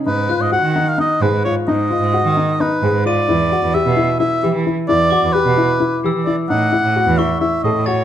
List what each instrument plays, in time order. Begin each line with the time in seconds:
0.06 cello G#2, grand piano D#4, oboe B4
0.29 grand piano F4, glockenspiel F#6
0.40 cello G#2, oboe D#5
0.52 grand piano F#4, oboe F#5
0.62 cello D#3
0.76 grand piano D#4
0.88 oboe F5
0.98 grand piano D#4, oboe D#5
1.21 cello G#2, grand piano G#4, oboe B4
1.32 cello G#2
1.45 grand piano F4, oboe C#5
1.67 cello G#2, grand piano D#4, oboe D#5
1.91 grand piano F4
2.01 cello G#2
2.13 grand piano F#4
2.24 cello D#3
2.37 grand piano D#4
2.60 grand piano D#4, oboe B4
2.82 cello G#2, grand piano G#4
2.94 cello G#2
3.06 grand piano F4, oboe D5, glockenspiel D#7
3.29 cello E2, grand piano E4
3.52 grand piano F#4
3.63 cello E2
3.74 grand piano G4, oboe E5
3.86 cello B2
3.97 grand piano E4
4.19 grand piano E4, oboe E5
4.43 cello E3, grand piano G4
4.54 cello E3
4.66 grand piano E4
4.88 cello E2, grand piano E4, oboe D5
5.10 grand piano F#4, glockenspiel D6
5.23 cello E2
5.33 grand piano G4, oboe B4
5.46 cello B2
5.58 grand piano E4
5.80 grand piano E4
6.03 cello E3, grand piano G4, glockenspiel E6
6.15 cello E3
6.25 grand piano E4, oboe D5
6.48 cello A2, grand piano D#4, oboe F#5
6.72 grand piano E4
6.83 cello A2
6.96 grand piano F#4
7.06 cello E2
7.18 grand piano E4, oboe E5, glockenspiel C#6
7.40 grand piano E4, oboe E5
7.64 cello A2, grand piano A4, oboe D#5
7.76 cello A2
7.86 grand piano F#4, oboe C#5, glockenspiel A6